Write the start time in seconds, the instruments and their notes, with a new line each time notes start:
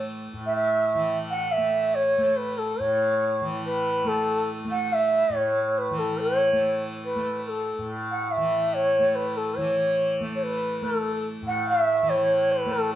Already playing: tanpura A2 E3 A3
0.33 tanpura A2
0.46 bansuri E5
0.56 bansuri E5
0.95 tanpura E3
1.31 bansuri F#5
1.52 bansuri E5
1.57 tanpura A3
1.95 bansuri C#5
2.18 tanpura A3
2.37 bansuri B4
2.58 bansuri A4
2.80 tanpura A2, bansuri C#5
3.41 tanpura E3
3.66 bansuri B4
4.04 tanpura A3, bansuri A4
4.65 tanpura A3
4.71 bansuri F#5
4.93 bansuri E5
5.29 tanpura A2
5.36 bansuri C#5
5.78 bansuri B4
5.90 tanpura E3
5.99 bansuri A4
6.20 bansuri C#5
6.53 tanpura A3
7.05 bansuri B4
7.16 tanpura A3
7.40 bansuri B4
7.48 bansuri A4
7.78 tanpura A2
8.11 bansuri F#5
8.22 bansuri F#5
8.31 bansuri E5
8.37 tanpura E3
8.74 bansuri C#5
8.99 tanpura A3
9.15 bansuri B4
9.37 bansuri A4
9.57 tanpura E3, bansuri C#5
10.20 tanpura A3
10.35 bansuri C#5
10.43 bansuri B4
10.82 tanpura A3, bansuri A4
11.42 tanpura A2
11.47 bansuri F#5
11.68 bansuri E5
12.02 tanpura E3
12.10 bansuri C#5
12.52 bansuri B4
12.66 tanpura A3
12.73 bansuri A4